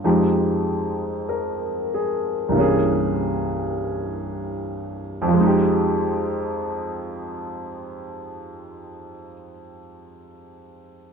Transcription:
X:1
M:4/4
L:1/16
Q:"Swing" 1/4=41
K:Fm
V:1 name="Upright piano"
z4 B2 A3 z6 z | z16 |]
V:2 name="Upright piano" clef=bass
[F,,F,A,EG]8 [C,,G,,=E,B,DA]8 | [F,,F,A,EG]16 |]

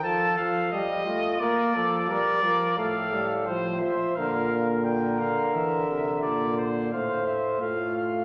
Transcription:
X:1
M:4/4
L:1/8
Q:1/4=87
K:Bb
V:1 name="Trumpet"
a f e2 d2 d2 | f2 c =e f z g f | =e2 d c f e f f |]
V:2 name="Flugelhorn"
A2 G F B A B B | A2 c2 B2 B2- | B3 z c2 F2 |]
V:3 name="Trombone" clef=bass
F, F, G, A, B, F, G, F, | A, G, F, z D, D,3- | D,4 A,2 A,2 |]
V:4 name="Bass trombone" clef=bass
z8 | A,,3 F, B,,3 D, | =E, C, B,,2 A,,2 A,,2 |]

